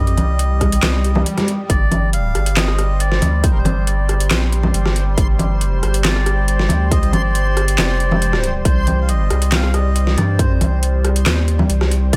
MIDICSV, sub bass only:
0, 0, Header, 1, 2, 480
1, 0, Start_track
1, 0, Tempo, 434783
1, 1872, Time_signature, 4, 2, 24, 8
1, 13431, End_track
2, 0, Start_track
2, 0, Title_t, "Sub bass"
2, 0, Program_c, 0, 38
2, 0, Note_on_c, 0, 43, 99
2, 174, Note_off_c, 0, 43, 0
2, 193, Note_on_c, 0, 36, 98
2, 895, Note_off_c, 0, 36, 0
2, 912, Note_on_c, 0, 36, 96
2, 1374, Note_off_c, 0, 36, 0
2, 1873, Note_on_c, 0, 31, 95
2, 2575, Note_off_c, 0, 31, 0
2, 2593, Note_on_c, 0, 31, 99
2, 3535, Note_off_c, 0, 31, 0
2, 3554, Note_on_c, 0, 38, 96
2, 4015, Note_off_c, 0, 38, 0
2, 4033, Note_on_c, 0, 31, 96
2, 4735, Note_off_c, 0, 31, 0
2, 4753, Note_on_c, 0, 34, 94
2, 5215, Note_off_c, 0, 34, 0
2, 5233, Note_on_c, 0, 31, 94
2, 5695, Note_off_c, 0, 31, 0
2, 5714, Note_on_c, 0, 31, 94
2, 6210, Note_off_c, 0, 31, 0
2, 6210, Note_on_c, 0, 30, 94
2, 6415, Note_off_c, 0, 30, 0
2, 6434, Note_on_c, 0, 31, 101
2, 7375, Note_off_c, 0, 31, 0
2, 7394, Note_on_c, 0, 38, 100
2, 7855, Note_off_c, 0, 38, 0
2, 7874, Note_on_c, 0, 31, 96
2, 8575, Note_off_c, 0, 31, 0
2, 8592, Note_on_c, 0, 29, 94
2, 9534, Note_off_c, 0, 29, 0
2, 9551, Note_on_c, 0, 36, 97
2, 10254, Note_off_c, 0, 36, 0
2, 10272, Note_on_c, 0, 36, 99
2, 11214, Note_off_c, 0, 36, 0
2, 11232, Note_on_c, 0, 43, 97
2, 11694, Note_off_c, 0, 43, 0
2, 11713, Note_on_c, 0, 36, 96
2, 12415, Note_off_c, 0, 36, 0
2, 12433, Note_on_c, 0, 39, 95
2, 12895, Note_off_c, 0, 39, 0
2, 12913, Note_on_c, 0, 36, 96
2, 13374, Note_off_c, 0, 36, 0
2, 13393, Note_on_c, 0, 36, 96
2, 13431, Note_off_c, 0, 36, 0
2, 13431, End_track
0, 0, End_of_file